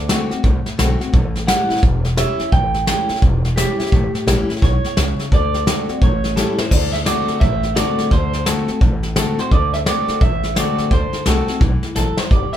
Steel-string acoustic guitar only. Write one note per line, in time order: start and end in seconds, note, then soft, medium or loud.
0.08 0.29 D3 medium
0.08 0.30 A3 medium
0.08 0.30 C4 medium
0.08 0.28 F#4 loud
0.30 0.44 C4 soft
0.30 0.43 F#4 medium
0.43 1.10 A2 medium
0.77 0.99 D3 medium
0.77 0.99 A3 medium
0.77 0.99 C4 medium
0.77 0.98 F#4 loud
1.00 1.13 C4 soft
1.00 1.12 F#4 medium
1.13 1.80 A2 medium
1.47 1.68 E3 medium
1.47 1.69 G3 medium
1.47 1.69 C#4 loud
1.47 1.68 E4 medium
1.69 1.83 C#4 soft
1.69 1.82 E4 medium
1.82 2.50 E2 medium
2.16 2.38 E3 medium
2.16 2.38 G3 medium
2.16 2.39 C#4 loud
2.16 2.38 E4 medium
2.39 2.53 C#4 soft
2.39 2.52 E4 medium
2.52 3.19 A2 medium
2.86 3.08 E3 medium
2.86 3.08 G3 medium
2.86 3.09 C#4 loud
2.86 3.08 E4 medium
3.09 3.23 C#4 soft
3.09 3.22 E4 medium
3.22 3.90 E2 medium
3.57 3.78 E3 medium
3.57 3.78 G3 loud
3.57 3.79 C#4 medium
3.57 3.76 E4 medium
3.78 3.92 C#4 soft
3.78 3.91 E4 medium
3.92 4.59 A2 medium
4.27 4.48 E3 loud
4.27 4.48 G3 medium
4.27 4.48 C#4 medium
4.27 4.48 E4 medium
4.49 4.63 C#4 medium
4.49 4.61 E4 medium
4.62 4.96 B2 medium
4.97 5.30 C#3 medium
5.32 5.65 D3 loud
5.66 5.87 D3 medium
5.66 5.88 A3 medium
5.66 5.88 C4 medium
5.66 5.87 F#4 medium
5.89 6.02 C4 soft
5.89 6.01 F#4 medium
6.02 6.69 A2 medium
6.36 6.57 E3 medium
6.36 6.58 G3 medium
6.36 6.58 C#4 medium
6.36 6.57 E4 medium
6.58 6.72 C#4 soft
6.58 6.71 E4 medium
6.72 7.04 D3 medium
7.06 7.40 D3 medium
7.06 7.40 A3 loud
7.06 7.41 C4 medium
7.06 7.41 F#4 medium
7.41 8.09 A2 medium
7.75 8.09 D3 medium
7.75 8.10 A3 medium
7.75 8.10 C4 loud
7.75 8.11 F#4 medium
8.12 8.45 D3 loud
8.46 8.67 D3 medium
8.46 8.67 A3 loud
8.46 8.68 C4 loud
8.46 8.66 F#4 medium
8.68 8.82 C4 soft
8.68 8.80 F#4 medium
8.82 9.49 A2 medium
9.16 9.37 D3 medium
9.16 9.38 A3 loud
9.16 9.38 C4 loud
9.16 9.37 F#4 medium
9.38 9.52 C4 soft
9.38 9.51 F#4 medium
9.52 9.85 D3 loud
9.86 10.20 D3 medium
9.86 10.20 A3 medium
9.86 10.20 C4 loud
9.86 10.21 F#4 loud
10.21 10.89 A2 medium
10.55 10.89 D3 loud
10.55 10.90 A3 medium
10.55 10.90 C4 loud
10.55 10.91 F#4 medium
10.91 11.24 D3 medium
11.25 11.47 D3 medium
11.25 11.47 A3 medium
11.25 11.47 C4 loud
11.25 11.46 F#4 loud
11.47 11.61 C4 soft
11.47 11.60 F#4 medium
11.60 11.94 E3 medium
11.96 12.30 F#3 medium
12.31 12.57 G3 loud